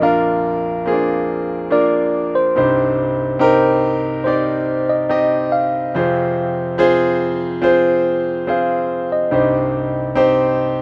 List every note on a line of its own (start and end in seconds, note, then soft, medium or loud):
0.00 2.52 A#1 medium
0.00 2.53 F2 medium
0.00 0.86 A#3 medium
0.00 0.02 D4 medium
0.00 0.83 D4 medium
0.00 0.03 F4 medium
0.00 0.83 F4 medium
0.00 0.03 A#4 medium
0.00 0.83 A#4 medium
0.00 1.68 F5 medium
0.86 1.67 A#3 medium
0.86 0.93 C4 soft
0.86 1.67 F4 medium
0.86 1.68 G#4 medium
0.93 1.69 D4 medium
1.71 2.52 A#3 medium
1.71 2.52 D4 medium
1.71 2.52 F4 medium
1.71 2.52 A#4 medium
1.71 2.37 D5 medium
2.35 4.23 C5 medium
2.56 5.91 C2 medium
2.56 5.91 G2 medium
2.56 3.36 C4 medium
2.56 3.37 D#4 medium
2.56 3.37 G4 medium
2.56 3.37 C5 medium
3.39 4.20 C4 medium
3.39 4.21 D#4 medium
3.39 4.21 G4 medium
3.39 4.21 A#4 loud
4.24 5.06 C4 medium
4.24 5.06 D#4 medium
4.24 5.06 G4 medium
4.24 4.90 C5 medium
4.24 5.07 D5 medium
4.89 5.09 D#5 medium
5.09 5.90 C4 medium
5.09 5.90 D#4 medium
5.09 5.90 G4 medium
5.09 5.54 D#5 medium
5.09 5.91 D#5 medium
5.52 6.75 F5 medium
5.95 9.29 F2 medium
5.95 9.29 C3 medium
5.95 6.75 C4 medium
5.95 6.75 F4 medium
5.95 6.75 G#4 medium
5.95 6.76 C5 medium
6.78 7.59 C4 medium
6.78 7.59 F4 medium
6.78 7.59 G#4 medium
6.78 7.60 C5 loud
7.62 8.43 C4 medium
7.62 8.43 F4 medium
7.62 8.44 G#4 medium
7.62 8.44 C5 medium
8.47 9.28 C4 medium
8.47 9.28 F4 medium
8.47 9.28 G#4 medium
8.47 9.29 C5 medium
8.47 9.08 F5 medium
9.12 10.82 D#5 medium
9.31 10.82 C2 medium
9.31 10.82 G2 medium
9.31 10.12 C4 medium
9.31 10.12 D#4 medium
9.31 10.13 G4 medium
9.31 10.13 C5 medium
10.15 10.82 C4 medium
10.15 10.82 D#4 medium
10.15 10.82 G4 medium
10.15 10.82 C5 medium